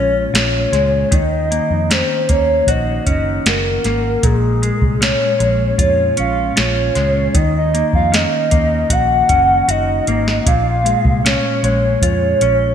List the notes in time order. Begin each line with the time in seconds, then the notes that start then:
Already playing: A#1 A#2 G#3 C#4 F4 C#5
0.34 A#1 F4 C#5, snare, closed hi-hat
0.72 C#2 G#3, snare, closed hi-hat
1.11 D#2 D#3 D#5, kick, closed hi-hat
1.51 A#3, closed hi-hat
1.70 F2
1.90 C#4 C5, snare, closed hi-hat
2.29 D#2 A#3 C#5, kick, closed hi-hat
2.67 A#1 F#4 D#5, kick, closed hi-hat
3.06 F#1 C#4 D#5, kick, closed hi-hat
3.46 F#1 F#4 A#4, snare, closed hi-hat
3.84 G#1 A#3, snare, closed hi-hat
4.23 A#1 A#2 G#4, kick, closed hi-hat
4.62 G#3, closed hi-hat
4.82 C2, kick
5.01 C#4 C#5, snare, closed hi-hat
5.39 A#1 G#3, closed hi-hat
5.78 F2 F4 C#5, kick, closed hi-hat
6.17 A#1 C#4 F5, closed hi-hat
6.56 A#1 F4 C#5, snare, closed hi-hat
6.95 C#2 G#3, snare, closed hi-hat
7.34 D#2 D#3 D#5, kick, closed hi-hat
7.57 D#5
7.74 A#3, closed hi-hat
7.93 F2 F5, kick
8.12 C#4 D#5, snare, closed hi-hat
8.51 D#2 A#3, kick, closed hi-hat
8.90 A#1 F#4 F#5, kick, closed hi-hat
9.29 F#1 C#4, kick, closed hi-hat
9.68 F#1 F#4 D#5, closed hi-hat
10.07 G#1 A#3, closed hi-hat
10.28 snare
10.46 A#1 A#2 F5, kick, closed hi-hat
10.85 G#3, closed hi-hat
11.05 C2, kick
11.25 C#4 C#5, snare, closed hi-hat
11.63 A#1 G#3 C#5, closed hi-hat
12.02 F2 F4, kick, closed hi-hat
12.41 A#1 C#4, closed hi-hat